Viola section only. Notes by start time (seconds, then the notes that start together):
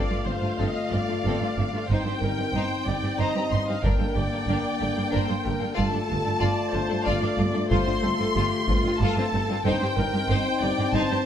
Already playing: D5
0.26 C5
0.61 D#5
0.93 D5
1.89 C5
2.22 A#4
2.54 C5
2.87 D5
3.19 D#5
3.85 A#4
4.17 D5
5.15 C5
5.46 A#4
5.78 A4
6.42 D5
6.74 C5
7.07 D5
7.71 C5
8.05 A4
8.37 G4
8.70 F4
9.01 A4
9.65 C5
9.99 A#4
10.31 C5
10.62 D5
10.96 C5